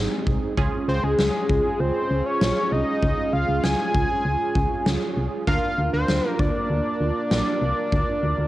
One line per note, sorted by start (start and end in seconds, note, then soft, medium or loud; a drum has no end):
0.00 5.43 G#3 medium
0.00 0.53 C4 medium
0.00 0.54 C4 medium
0.00 0.53 D#4 medium
0.00 0.54 D#4 medium
0.00 0.53 G#4 medium
0.27 0.38 C2 medium
0.27 kick medium
0.57 0.69 C#2 loud
0.57 5.43 C#4 medium
0.57 5.43 F4 medium
0.57 8.48 F4 medium
0.57 5.43 G#4 medium
0.57 kick medium
0.88 1.00 C#2 loud
0.88 1.05 C5 medium
1.03 1.15 C#2 medium
1.03 1.81 G#4 medium
1.19 1.30 C#2 medium
1.19 snare loud
1.49 1.61 C#2 loud
1.49 kick loud
1.80 1.91 C#2 loud
1.80 2.27 C5 medium
2.10 2.22 C#2 loud
2.26 2.74 C#5 medium
2.41 2.53 A#1 loud
2.41 snare loud
2.72 2.83 C2 medium
2.72 3.34 D#5 loud
3.03 3.14 C#2 loud
3.03 kick medium
3.33 3.45 C#2 loud
3.33 3.65 F5 loud
3.48 3.60 C#2 medium
3.63 3.75 C#2 medium
3.63 4.86 G#5 loud
3.63 snare loud
3.94 4.06 C#2 loud
3.94 kick medium
4.25 4.36 C#2 loud
4.55 4.67 C#2 loud
4.55 kick medium
4.86 4.98 C#2 loud
4.86 snare loud
5.17 5.28 C2 medium
5.47 5.59 D2 loud
5.47 8.48 A#3 medium
5.47 8.48 D4 medium
5.47 8.48 F4 medium
5.47 8.48 A#4 medium
5.47 5.90 F5 loud
5.47 kick medium
5.78 5.90 D2 loud
5.93 6.05 D2 medium
5.93 6.28 C5 loud
6.08 6.20 D2 medium
6.08 snare loud
6.28 6.41 A#4 loud
6.39 6.51 D2 medium
6.39 8.48 D5 loud
6.39 kick loud
6.70 6.81 D2 loud
7.01 7.12 D2 loud
7.31 7.43 A#1 loud
7.31 snare loud
7.62 7.73 C2 loud
7.92 8.04 D2 loud
7.92 kick medium
8.23 8.34 D2 loud
8.38 8.48 D2 medium